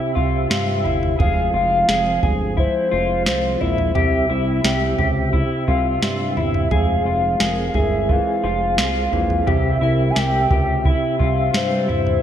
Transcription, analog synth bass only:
0.17 0.47 C2 medium
0.51 0.86 G2 medium
0.85 1.16 G1 medium
1.20 1.50 F1 medium
1.54 1.84 F1 loud
1.89 2.19 F1 medium
2.23 2.69 G1 medium
2.93 3.28 F1 medium
3.27 3.57 C2 medium
3.61 3.92 A#1 loud
3.96 4.26 C2 loud
4.30 4.61 C2 medium
4.64 4.95 C2 loud
4.99 5.45 C#2 medium
5.68 5.99 C2 medium
6.02 6.38 G2 medium
6.37 6.67 G1 medium
6.71 7.02 F1 medium
7.05 7.36 F1 medium
7.40 7.71 F1 loud
7.75 8.20 G1 medium
8.44 8.79 F1 medium
8.78 9.09 C2 medium
9.12 9.43 A#1 medium
9.47 9.78 C2 loud
9.82 10.12 C2 medium
10.16 10.47 C2 loud
10.51 10.96 C#2 medium
11.20 11.50 C2 medium
11.54 11.90 G2 medium
11.89 12.19 G1 medium

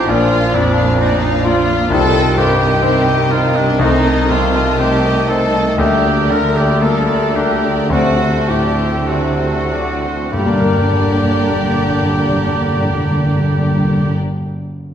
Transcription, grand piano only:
0.00 0.12 A1 medium
0.00 0.11 A2 soft
0.00 0.11 D#4 medium
0.00 0.11 F4 medium
0.08 1.87 A#1 medium
0.53 1.27 F2 medium
0.98 1.72 D4 medium
1.45 1.91 F4 medium
1.90 3.76 C2 medium
2.37 3.12 G2 medium
2.82 3.60 C4 medium
3.30 3.80 D#4 medium
3.79 5.74 C2 medium
4.30 5.09 C3 medium
4.79 5.59 C4 medium
5.27 5.78 D#4 medium
5.78 7.87 D2 medium
6.30 7.15 D3 medium
6.82 7.69 A#3 medium
7.35 7.91 D4 soft
7.90 10.28 D2 medium
8.48 9.45 A2 soft
9.09 10.09 C4 soft
9.72 10.33 D4 soft
10.32 14.14 G2 soft
10.39 14.22 G3 soft
10.46 14.28 A#3 soft
10.52 14.35 D4 soft
10.60 14.42 A#4 soft

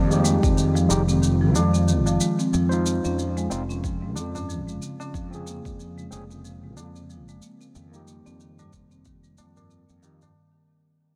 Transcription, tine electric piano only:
0.09 0.86 G#3 medium
0.09 0.87 D#4 medium
0.09 0.88 G4 medium
0.89 1.00 G#3 medium
0.89 1.01 D#4 medium
0.89 1.01 G4 medium
2.69 3.47 D#4 medium
2.69 3.46 C5 medium
2.73 3.48 F4 medium
3.50 3.61 C4 medium
3.50 3.62 D#4 medium
3.50 3.62 F4 medium
5.31 6.07 C4 medium
5.31 6.09 G#4 medium
6.11 6.22 C4 medium
6.11 6.23 C#4 medium
6.11 6.23 G#4 medium
7.91 8.68 A#3 medium
7.91 8.69 D#4 medium
7.96 8.70 G4 medium
10.02 10.20 A#3 medium
10.02 10.21 D#4 medium
10.02 10.21 G4 medium

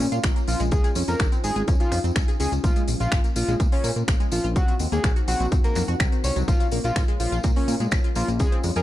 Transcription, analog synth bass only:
0.12 0.19 A#2 medium
0.24 0.32 A#1 loud
0.48 0.56 A#1 medium
0.60 0.73 A#1 medium
0.72 0.80 C#2 loud
0.96 1.04 F2 medium
1.08 1.15 F2 medium
1.20 1.28 G#1 loud
1.44 1.52 G#1 medium
1.56 1.63 G#1 medium
1.68 1.76 F2 loud
1.92 2.00 F2 loud
2.04 2.11 F2 medium
2.16 2.24 C#2 loud
2.40 2.48 C#2 loud
2.52 2.59 C#2 medium
2.64 2.72 A#1 loud
2.88 2.96 A#1 medium
3.00 3.07 A#1 medium
3.12 3.20 G#1 loud
3.36 3.44 A#1 medium
3.48 3.56 A#1 medium
3.60 3.68 A#2 loud
3.84 3.92 A#2 medium
3.96 4.04 A#2 medium
4.08 4.16 A#1 loud
4.32 4.40 A#1 loud
4.44 4.57 A#1 medium
4.56 4.64 C2 loud
4.80 4.88 D#2 medium
4.92 5.00 D#2 medium
5.04 5.12 A#1 loud
5.28 5.36 A#1 medium
5.40 5.47 A#1 medium
5.52 5.60 F2 loud
5.76 5.84 F2 medium
5.88 5.96 F2 medium
6.00 6.08 C2 loud
6.24 6.32 C2 loud
6.36 6.44 C2 medium
6.48 6.56 A#1 loud
6.72 6.80 A#1 medium
6.84 6.92 A#1 medium
6.96 7.04 G#1 loud
7.20 7.28 A#1 medium
7.32 7.40 A#1 medium
7.44 7.52 A#2 loud
7.68 7.76 A#2 medium
7.80 7.87 A#2 medium
7.92 8.00 A#1 loud
8.16 8.24 A#1 medium
8.28 8.41 A#1 medium
8.40 8.48 C#2 loud
8.64 8.72 F2 medium
8.76 8.82 F2 medium

